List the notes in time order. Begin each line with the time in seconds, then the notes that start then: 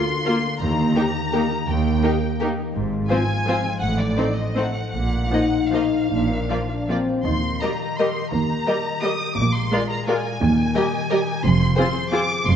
Already playing: D3 A#3 F4 C6
0.08 D4
0.25 A#3 F4 A#4
0.45 D4
0.61 D#2 D#3 A#5
0.79 G4
0.96 A#3 D#4 G4 A#4
1.16 D#4
1.32 A#3 D#4 G4 A#4
1.51 D#4
1.68 D#2 D#3 G5
1.86 G4
2.03 A#3 D#4 G4 A#4
2.23 D#4
2.39 A#3 D#4 G4 A#4
2.59 D#4
2.75 G#1 G#2
2.93 F4
3.09 F3 C4 F4 C5 G#5
3.29 G#3
3.47 F3 C4 F4 C5
3.65 G#3
3.81 A1 A2 F#5
3.99 D#4 D5
4.16 A3 C4 D#4 C5
4.37 F#3 D#5
4.55 A3 C4 D#4 C5 F#5
4.75 F#3
4.94 A#1 A#2 F#5
5.13 D#4
5.32 F3 A#3 D#4 D#5
5.54 A#3
5.72 F3 A#3 D#4 D#5 F5
5.93 A#3
6.10 A#1 A#2 D4
6.29 A#3 D4
6.50 F3 A#3 F4 D5
6.69 A#3 D4
6.89 F3 A#3 C4 F4 D5
7.09 A#3
7.26 D#2 D#3 C6
7.43 D#4
7.61 G3 G4 A#4 D#5 A#5
7.81 D#5
7.98 G3 G4 A#4 D#5 A#5 C6
8.15 G4
8.32 D#2 D#3 A#5
8.50 D#4
8.66 G3 G4 A#4 D#5
8.85 D#5
9.02 G3 G4 A#4 D#5 A#5 D#6
9.20 G4
9.37 A#1 A#2 D6
9.54 G#3 C6
9.71 G#3 F4 A#4 D5
9.90 G#4 A#5
10.08 G#3 F4 A#4 D5 G#5
10.24 A#4
10.41 D#2 D#3
10.57 D#4
10.75 G3 G4 A#4 D#5
10.92 D#5
11.10 G3 G4 A#4 D#5 A#5
11.27 G4
11.43 F1 F2 F3 C6
11.60 C4
11.76 C4 F4 G#4 C5 C6
11.95 C5
12.12 C4 F4 G#4 C5 G#5 D6
12.31 G#4
12.46 F1 F2 F3 C6